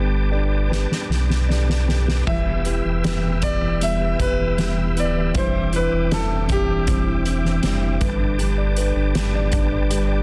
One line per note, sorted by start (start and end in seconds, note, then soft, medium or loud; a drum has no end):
0.00 0.86 G1 medium
0.00 2.23 G3 medium
0.00 0.32 B3 medium
0.00 0.33 D4 medium
0.00 1.06 D4 soft
0.00 0.32 G4 medium
0.00 0.30 A4 medium
0.00 0.69 B4 soft
0.00 2.24 B4 medium
0.00 2.24 G5 medium
0.00 2.24 A5 soft
0.00 2.25 D6 medium
0.32 0.70 D4 soft
0.32 0.70 G4 soft
0.32 0.71 A4 medium
0.32 1.47 D5 soft
0.69 1.48 B3 medium
0.69 1.48 D4 medium
0.69 1.50 G4 medium
0.69 1.50 A4 medium
0.69 1.87 B4 soft
0.69 snare soft
0.91 snare soft
1.09 2.23 B1 medium
1.09 snare medium
1.30 snare medium
1.48 1.88 B3 medium
1.48 1.89 D4 medium
1.48 1.87 G4 medium
1.48 1.85 A4 medium
1.48 2.25 D5 soft
1.48 snare medium
1.70 snare medium
1.87 2.27 D4 soft
1.87 2.26 G4 soft
1.87 2.27 A4 soft
1.87 2.26 B4 soft
1.87 snare medium
2.08 snare medium
2.26 2.81 E1 loud
2.26 2.65 E3 medium
2.26 2.83 E3 medium
2.26 2.66 G3 medium
2.26 2.66 E4 medium
2.26 2.65 G4 medium
2.26 5.32 B4 medium
2.26 2.63 B4 medium
2.26 3.38 E5 medium
2.26 5.32 E5 medium
2.26 7.98 G5 medium
2.26 5.32 E6 medium
2.26 kick loud
2.26 crash medium
2.46 3.04 B3 soft
2.64 3.03 E4 soft
2.64 3.22 G4 soft
2.64 3.03 G4 soft
2.64 3.03 B4 soft
2.64 closed hi-hat medium
2.84 4.16 E1 medium
2.84 3.61 E3 soft
3.03 4.56 E3 medium
3.03 3.79 G3 medium
3.03 3.42 B3 soft
3.03 3.81 E4 medium
3.03 3.81 G4 medium
3.03 3.82 B4 medium
3.03 snare loud
3.03 closed hi-hat medium
3.23 3.99 G4 medium
3.42 3.81 B3 soft
3.42 3.79 D5 medium
3.42 kick medium
3.42 closed hi-hat medium
3.62 4.39 E3 soft
3.80 4.19 G3 soft
3.80 4.19 B3 medium
3.80 4.20 E4 medium
3.80 4.19 G4 medium
3.80 4.17 B4 medium
3.80 4.22 E5 loud
3.80 closed hi-hat medium
4.01 4.77 G4 soft
4.18 4.98 E1 loud
4.18 4.57 E4 soft
4.18 4.57 G4 soft
4.18 4.58 B4 soft
4.18 5.00 B4 medium
4.18 kick medium
4.18 closed hi-hat medium
4.40 5.16 E3 soft
4.57 4.96 E3 medium
4.57 4.96 G3 medium
4.57 4.96 B3 medium
4.57 4.97 E4 medium
4.57 4.96 G4 medium
4.57 4.94 B4 medium
4.57 snare medium
4.57 closed hi-hat medium
4.78 5.34 G4 soft
4.96 5.32 D1 medium
4.96 5.34 B3 soft
4.96 5.34 E4 soft
4.96 5.35 G4 soft
4.96 5.35 B4 soft
4.96 5.38 D5 medium
4.96 closed hi-hat medium
5.17 5.35 E3 medium
5.33 5.88 E1 medium
5.33 5.73 E3 medium
5.33 5.92 E3 medium
5.33 5.73 G3 medium
5.33 7.98 C4 medium
5.33 5.73 D4 medium
5.33 5.73 E4 medium
5.33 5.74 C5 medium
5.33 7.98 E5 medium
5.33 10.23 D6 medium
5.33 kick medium
5.33 closed hi-hat medium
5.37 5.72 C5 medium
5.54 6.11 C4 soft
5.73 6.11 D4 soft
5.73 6.30 E4 medium
5.73 6.12 E4 soft
5.73 6.14 B4 medium
5.73 closed hi-hat medium
5.93 7.60 E1 medium
5.93 6.67 E3 medium
6.12 6.88 E3 medium
6.12 6.87 G3 medium
6.12 6.48 C4 medium
6.12 6.88 D4 medium
6.12 6.88 E4 medium
6.12 6.52 A4 medium
6.12 6.89 C5 medium
6.12 snare loud
6.12 closed hi-hat medium
6.31 7.06 E4 soft
6.49 6.86 C4 medium
6.49 7.99 G4 medium
6.49 kick medium
6.49 closed hi-hat medium
6.69 7.44 E3 medium
6.87 7.26 G3 medium
6.87 7.25 C4 medium
6.87 7.26 D4 medium
6.87 7.26 E4 medium
6.87 7.24 C5 medium
6.87 kick medium
6.87 closed hi-hat medium
7.07 7.81 E4 soft
7.25 7.63 C4 soft
7.25 7.63 D4 soft
7.25 7.64 E4 soft
7.25 7.64 C5 soft
7.25 closed hi-hat medium
7.45 8.00 E3 soft
7.45 snare soft
7.63 7.99 F1 medium
7.63 8.01 E3 medium
7.63 8.02 G3 medium
7.63 8.01 C4 medium
7.63 8.02 D4 medium
7.63 8.02 E4 medium
7.63 8.01 C5 medium
7.63 snare medium
7.63 closed hi-hat medium
7.83 8.01 E4 soft
8.01 8.92 G1 loud
8.01 10.23 G3 medium
8.01 8.39 D4 soft
8.01 10.23 B4 medium
8.01 8.39 B4 medium
8.01 10.23 G5 medium
8.01 10.23 A5 medium
8.01 kick medium
8.01 closed hi-hat medium
8.20 8.96 D4 medium
8.38 8.77 G3 medium
8.38 8.78 D4 medium
8.38 9.15 G4 medium
8.38 8.78 A4 medium
8.38 8.76 B4 medium
8.38 closed hi-hat medium
8.58 9.34 D5 medium
8.77 9.15 D4 soft
8.77 9.16 A4 soft
8.77 10.23 B4 medium
8.77 9.16 B4 medium
8.77 closed hi-hat medium
8.95 10.23 G1 medium
8.95 9.52 D4 soft
9.15 9.90 G3 medium
9.15 9.91 D4 medium
9.15 9.90 G4 medium
9.15 9.93 A4 loud
9.15 9.93 B4 medium
9.15 snare loud
9.15 closed hi-hat medium
9.36 9.71 D5 medium
9.52 10.23 D4 medium
9.52 kick medium
9.52 closed hi-hat medium
9.72 10.08 D5 soft
9.91 10.23 G3 medium
9.91 10.23 D4 medium
9.91 10.23 G4 medium
9.91 10.23 A4 medium
9.91 10.23 B4 medium
9.91 closed hi-hat medium
10.09 10.23 D5 soft